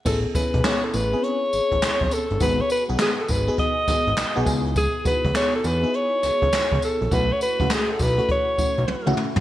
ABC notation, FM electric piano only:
X:1
M:4/4
L:1/16
Q:"Swing 16ths" 1/4=102
K:Alyd
V:1 name="FM electric piano"
[B,CEG]2 [B,CEG]2 [B,CEG]2 z [B,^B,CEG]6- [=B,^B,CEG] z2 | [B,DFG]2 z [B,DFG]3 z [B,DFG]2 z [B,DFG]2 z [B,DFG] [B,DEG]2- | [B,DEG] z [B,DEF]2 [B,DEG]2 z [B,DEG]6- [B,DEG] z2 | [A,CEF]2 z [A,CEF]3 z [A,CEF]2 z [A,CEF]2 z [A,CEF]2 z |]